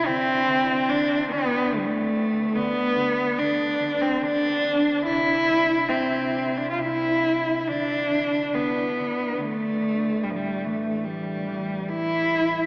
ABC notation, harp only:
X:1
M:3/4
L:1/8
Q:1/4=72
K:C
V:1 name="Harp" clef=bass
D, D, D, D, D,2 | D, D, D, D, D,2 | C, G, C, G, C,2 | D, D, D, D, D, D, |
A,, E, G, E, G, A,, |]